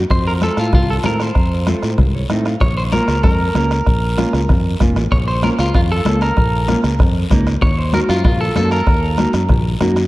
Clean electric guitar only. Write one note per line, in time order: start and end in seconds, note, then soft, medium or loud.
0.11 0.27 C5 medium
0.27 0.32 A#4 medium
0.43 0.58 A4 medium
0.59 0.74 F4 medium
0.75 0.89 F4 medium
0.90 0.95 A4 medium
1.06 1.22 A#4 loud
1.22 1.84 C5 medium
2.61 2.76 C#5 loud
2.77 2.82 C5 loud
2.92 3.22 A#4 medium
3.23 4.76 A#4 medium
5.12 5.17 C#5 loud
5.28 5.43 C5 medium
5.44 5.49 A#4 medium
5.60 5.74 F4 medium
5.75 5.80 F4 medium
5.92 6.21 A4 medium
6.22 6.80 A#4 medium
7.62 7.78 C#5 loud
7.78 7.94 C5 medium
7.94 7.99 A#4 medium
8.10 8.24 F4 medium
8.25 8.39 F4 medium
8.41 8.55 A4 medium
8.56 8.71 A4 loud
8.72 9.30 A#4 medium